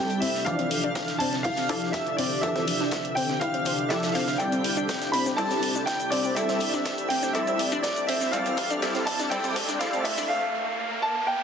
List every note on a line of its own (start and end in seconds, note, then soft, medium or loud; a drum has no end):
0.00 8.29 C3 medium
0.00 0.44 G3 medium
0.00 0.42 A3 medium
0.00 0.44 C4 medium
0.00 8.29 D4 medium
0.00 0.44 E4 medium
0.00 8.29 G4 medium
0.00 0.44 A4 medium
0.00 0.44 D5 loud
0.00 0.20 G5 loud
0.00 0.22 G5 loud
0.10 closed hi-hat soft
0.20 0.34 C4 loud
0.20 0.44 E5 medium
0.20 0.46 E5 medium
0.20 closed hi-hat medium
0.20 open hi-hat loud
0.35 snare soft
0.45 4.36 D3 medium
0.45 1.66 E3 medium
0.45 1.66 F3 medium
0.45 1.66 D4 medium
0.45 1.66 A4 medium
0.45 1.66 D5 loud
0.45 1.18 F5 loud
0.45 1.22 F5 loud
0.45 kick loud
0.45 closed hi-hat medium
0.59 0.70 C4 medium
0.59 closed hi-hat soft
0.71 closed hi-hat medium
0.71 open hi-hat loud
0.84 0.95 D4 loud
0.84 closed hi-hat soft
0.95 kick loud
0.95 snare loud
0.95 closed hi-hat medium
1.08 snare soft
1.08 closed hi-hat soft
1.18 1.32 C4 loud
1.18 1.42 A5 loud
1.18 closed hi-hat medium
1.18 open hi-hat loud
1.33 1.40 C4 medium
1.33 snare soft
1.33 closed hi-hat soft
1.43 1.53 E4 loud
1.43 1.90 F5 loud
1.43 kick loud
1.43 closed hi-hat medium
1.43 open hi-hat medium
1.56 1.65 C4 medium
1.56 snare soft
1.56 closed hi-hat soft
1.69 2.40 F3 medium
1.69 2.40 D4 medium
1.69 2.40 E4 medium
1.69 2.40 A4 medium
1.69 1.74 C5 medium
1.69 2.40 D5 loud
1.69 snare soft
1.69 open hi-hat loud
1.82 snare soft
1.82 closed hi-hat soft
1.92 2.06 G4 loud
1.92 2.16 E5 loud
1.92 2.16 E5 medium
1.92 kick loud
1.92 snare loud
1.92 closed hi-hat medium
2.06 closed hi-hat soft
2.17 2.30 C4 loud
2.17 2.43 D5 medium
2.17 2.41 D5 medium
2.17 closed hi-hat medium
2.17 open hi-hat loud
2.41 3.88 E3 medium
2.41 3.88 F3 loud
2.41 3.88 D4 medium
2.41 3.88 A4 medium
2.41 3.88 D5 loud
2.41 3.12 E5 loud
2.41 kick loud
2.41 closed hi-hat medium
2.56 2.67 C4 medium
2.56 kick medium
2.56 snare soft
2.56 closed hi-hat soft
2.67 closed hi-hat medium
2.67 open hi-hat loud
2.80 2.92 D4 loud
2.80 snare medium
2.80 closed hi-hat soft
2.91 kick loud
2.91 snare loud
2.91 closed hi-hat medium
3.05 closed hi-hat soft
3.15 3.28 C4 loud
3.15 3.41 G5 medium
3.15 3.39 G5 loud
3.15 closed hi-hat medium
3.15 open hi-hat loud
3.29 3.37 C4 medium
3.29 snare soft
3.29 closed hi-hat soft
3.40 3.49 E4 loud
3.40 3.91 F5 medium
3.40 3.88 F5 loud
3.40 kick loud
3.40 closed hi-hat medium
3.54 3.62 C4 medium
3.54 closed hi-hat soft
3.65 3.71 C5 medium
3.65 closed hi-hat medium
3.65 open hi-hat loud
3.79 closed hi-hat soft
3.89 4.37 F3 medium
3.89 4.37 D4 medium
3.89 4.37 E4 medium
3.89 4.02 G4 loud
3.89 4.37 A4 medium
3.89 4.37 D5 loud
3.89 4.15 E5 loud
3.89 4.13 E5 medium
3.89 kick loud
3.89 snare loud
3.89 closed hi-hat medium
4.03 snare loud
4.03 closed hi-hat soft
4.03 closed hi-hat medium
4.14 4.27 C4 loud
4.14 4.40 F5 medium
4.14 4.38 F5 medium
4.14 snare loud
4.14 closed hi-hat medium
4.14 open hi-hat loud
4.28 snare loud
4.28 closed hi-hat medium
4.38 5.36 G3 medium
4.38 8.29 A3 medium
4.38 5.36 C4 medium
4.38 5.36 E4 medium
4.38 5.36 A4 medium
4.38 5.36 D5 loud
4.38 5.09 G5 loud
4.38 kick loud
4.38 closed hi-hat medium
4.38 riser medium
4.38 shaker medium
4.52 4.64 C4 medium
4.52 closed hi-hat soft
4.52 shaker soft
4.64 closed hi-hat medium
4.64 open hi-hat loud
4.77 4.88 D4 loud
4.77 closed hi-hat soft
4.77 shaker medium
4.89 kick loud
4.89 snare loud
4.89 closed hi-hat medium
4.89 shaker medium
5.02 snare soft
5.02 closed hi-hat soft
5.02 shaker soft
5.12 5.25 C4 loud
5.12 5.18 B5 loud
5.12 5.23 B5 loud
5.12 closed hi-hat medium
5.12 open hi-hat medium
5.26 5.34 C4 medium
5.26 snare soft
5.26 closed hi-hat soft
5.26 shaker medium
5.37 6.35 G3 medium
5.37 6.35 C4 medium
5.37 6.35 E4 medium
5.37 6.35 A4 medium
5.37 6.35 D5 loud
5.37 5.88 A5 loud
5.37 5.85 A5 loud
5.37 kick loud
5.37 closed hi-hat medium
5.37 open hi-hat medium
5.37 shaker medium
5.50 5.62 C4 medium
5.50 snare soft
5.50 closed hi-hat soft
5.50 shaker soft
5.63 snare soft
5.63 closed hi-hat medium
5.63 open hi-hat loud
5.75 5.87 D4 medium
5.75 snare soft
5.75 closed hi-hat soft
5.75 shaker medium
5.86 6.09 G5 loud
5.86 kick loud
5.86 snare loud
5.86 closed hi-hat medium
5.86 shaker medium
6.00 closed hi-hat soft
6.00 shaker soft
6.10 6.23 C4 loud
6.10 6.34 D5 medium
6.10 6.37 D5 medium
6.10 closed hi-hat medium
6.10 open hi-hat medium
6.24 6.32 C4 medium
6.24 shaker medium
6.35 7.33 G3 loud
6.35 7.33 C4 medium
6.35 7.33 E4 medium
6.35 7.33 A4 medium
6.35 7.33 D5 loud
6.35 7.08 E5 loud
6.35 7.12 E5 loud
6.35 kick loud
6.35 closed hi-hat medium
6.35 shaker medium
6.49 6.60 C4 medium
6.49 snare soft
6.49 closed hi-hat soft
6.49 shaker soft
6.60 closed hi-hat medium
6.60 open hi-hat loud
6.73 6.85 D4 loud
6.73 snare soft
6.73 shaker medium
6.85 kick loud
6.85 snare loud
6.85 closed hi-hat medium
6.85 shaker medium
6.98 closed hi-hat soft
6.98 shaker soft
7.09 7.22 C4 medium
7.09 7.35 G5 medium
7.09 7.33 G5 medium
7.09 closed hi-hat medium
7.09 open hi-hat medium
7.23 7.30 C4 medium
7.23 snare soft
7.23 closed hi-hat soft
7.23 shaker medium
7.33 8.31 G3 medium
7.33 8.31 C4 medium
7.33 8.31 E4 medium
7.33 8.31 A4 medium
7.33 8.31 D5 loud
7.33 7.80 E5 loud
7.33 kick loud
7.33 closed hi-hat medium
7.33 shaker medium
7.47 7.59 C4 medium
7.47 closed hi-hat soft
7.47 shaker soft
7.59 closed hi-hat medium
7.59 open hi-hat loud
7.72 7.83 D4 loud
7.72 closed hi-hat soft
7.72 shaker medium
7.82 8.06 D5 medium
7.82 8.09 D5 medium
7.82 kick loud
7.82 snare loud
7.82 closed hi-hat medium
7.82 shaker medium
7.96 closed hi-hat soft
7.96 shaker soft
8.07 8.20 C4 loud
8.07 8.31 E5 medium
8.07 8.33 E5 medium
8.07 closed hi-hat medium
8.07 open hi-hat medium
8.21 8.29 C4 medium
8.21 snare medium
8.21 shaker medium
8.32 10.28 C3 medium
8.32 8.80 E3 medium
8.32 10.28 E3 medium
8.32 8.80 G3 medium
8.32 8.81 C4 medium
8.32 10.28 D4 medium
8.32 8.80 A4 medium
8.32 8.81 D5 loud
8.32 9.05 F5 loud
8.32 9.09 F5 loud
8.32 kick loud
8.32 closed hi-hat medium
8.32 closed hi-hat loud
8.32 shaker medium
8.46 8.57 C4 medium
8.46 closed hi-hat soft
8.46 shaker soft
8.57 kick loud
8.57 closed hi-hat medium
8.57 open hi-hat loud
8.70 8.81 D4 loud
8.70 closed hi-hat soft
8.70 shaker medium
8.82 9.30 G3 loud
8.82 9.30 C4 medium
8.82 9.30 E4 medium
8.82 9.30 A4 medium
8.82 9.30 D5 loud
8.82 kick loud
8.82 snare loud
8.82 closed hi-hat loud
8.82 closed hi-hat medium
8.82 shaker medium
8.94 9.06 C4 medium
8.94 snare medium
8.94 closed hi-hat soft
8.94 shaker soft
9.05 9.29 A5 loud
9.05 kick loud
9.05 closed hi-hat medium
9.05 open hi-hat medium
9.19 9.30 D4 loud
9.19 snare soft
9.19 closed hi-hat soft
9.19 shaker medium
9.30 9.79 G3 medium
9.30 9.79 C4 medium
9.30 9.79 E4 medium
9.30 9.79 A4 medium
9.30 9.79 D5 loud
9.30 9.79 G5 loud
9.30 9.82 G5 medium
9.30 kick loud
9.30 closed hi-hat medium
9.30 open hi-hat medium
9.30 shaker medium
9.44 9.55 C4 medium
9.44 closed hi-hat soft
9.44 shaker soft
9.56 kick loud
9.56 snare soft
9.56 open hi-hat loud
9.69 9.79 D4 loud
9.69 snare soft
9.69 shaker medium
9.79 10.28 G3 loud
9.79 10.28 C4 medium
9.79 10.28 E4 medium
9.79 10.28 A4 medium
9.79 10.28 D5 loud
9.79 10.03 F5 medium
9.79 10.05 F5 loud
9.79 kick loud
9.79 snare loud
9.79 closed hi-hat medium
9.79 shaker medium
9.93 10.05 C4 medium
9.93 closed hi-hat soft
9.93 shaker soft
10.04 10.30 E5 medium
10.04 kick loud
10.04 closed hi-hat medium
10.04 open hi-hat loud
10.18 10.28 D4 loud
10.18 shaker medium
10.28 11.05 F5 loud
11.02 11.28 A5 loud
11.27 11.43 G5 medium